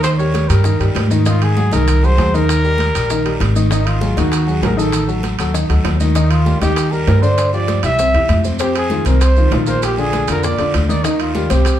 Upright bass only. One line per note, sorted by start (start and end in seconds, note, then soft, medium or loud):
0.00 0.44 D#2 medium
0.49 0.78 G2 medium
0.80 0.94 G2 medium
0.95 1.66 G#2 medium
1.72 2.15 C2 medium
2.18 2.89 D#2 medium
2.95 3.37 A#1 medium
3.40 4.11 G#1 medium
4.17 4.59 D#2 medium
4.62 5.33 A1 medium
5.39 5.67 D#2 medium
5.69 5.84 D2 medium
5.84 6.56 D#2 medium
6.61 7.04 D#2 medium
7.07 7.78 G2 medium
7.83 8.12 C2 medium
8.14 8.28 E2 medium
8.29 9.00 F2 medium
9.05 9.48 C2 medium
9.52 10.23 A#1 medium
10.28 10.57 F2 medium
10.59 10.73 F2 medium
10.74 11.45 D#2 medium
11.50 11.80 C2 medium